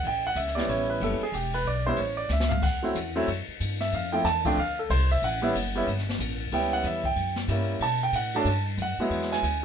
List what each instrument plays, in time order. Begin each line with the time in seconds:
0.04 upright bass A1, grand piano G5, ride
0.27 grand piano F#5
0.35 upright bass C#2, grand piano E5, hi-hat pedal, ride
0.48 snare
0.55 grand piano G3 B3 C#4 E4 D5, snare
0.67 upright bass A1, grand piano C#5, ride
0.90 grand piano B4
1.00 upright bass F#1, grand piano G3 B3 C#4 E4 A4, hi-hat pedal, ride
1.20 grand piano G#4, muted upright bass stroke, ride
1.32 upright bass E1, grand piano G4, ride
1.53 grand piano B4, ride
1.64 upright bass B1, grand piano D5, hi-hat pedal
1.87 grand piano G3 B3 C#4 E4 C5
1.97 upright bass A1, grand piano C#5, ride
2.17 grand piano D5
2.29 upright bass C#2, grand piano E5, snare, hi-hat pedal
2.40 snare
2.49 grand piano F5, floor tom
2.62 upright bass D2, grand piano F#5, kick, crash
2.82 grand piano F#3 A3 C4 E4
2.95 upright bass E2, hi-hat pedal, ride
3.16 grand piano F#3 A3 C4 E4, ride
3.27 upright bass F#2, ride
3.48 muted upright bass stroke
3.60 upright bass G2, hi-hat pedal, ride
3.80 grand piano E5, snare, ride
3.92 upright bass F2, grand piano F5, ride
4.12 grand piano F3 A3 C4 E4 G5
4.24 upright bass E2, grand piano A5, snare, hi-hat pedal, ride
4.45 grand piano F3 A3 C4 D4 G5, kick, ride
4.57 upright bass D2, grand piano F5
4.79 grand piano A4
4.90 upright bass C2, grand piano C5, hi-hat pedal, ride
5.11 grand piano E5, ride
5.22 upright bass A1, grand piano F#5, ride
5.42 grand piano G3 B3 C#4 E4, ride
5.54 upright bass F#1, hi-hat pedal, ride
5.75 grand piano G3 B3 C#4 E4, ride
5.87 upright bass G1, ride
5.98 snare
6.09 snare
6.19 upright bass A1, hi-hat pedal, ride
6.40 ride
6.52 upright bass C#2, grand piano G3 B3 C#4 E4 G5, ride
6.73 grand piano F#5
6.83 upright bass E2, grand piano E5, hi-hat pedal, ride
7.04 grand piano G5, kick
7.16 upright bass F#2, ride
7.36 snare
7.48 upright bass G2, grand piano G3 A#3 C#4 E4, hi-hat pedal, ride
7.80 upright bass B2, grand piano A5, ride
8.03 grand piano G5
8.12 upright bass A2, grand piano F#5, hi-hat pedal, ride
8.33 grand piano F#3 A3 C#4 D4 A5, ride
8.45 upright bass G2, ride
8.77 upright bass F#2, hi-hat pedal, ride
8.82 grand piano F#5
8.98 grand piano F#3 G#3 B3 E4, muted upright bass stroke, ride
9.10 upright bass E2, ride
9.22 snare
9.31 grand piano G#5, snare, ride
9.43 upright bass D2, hi-hat pedal, ride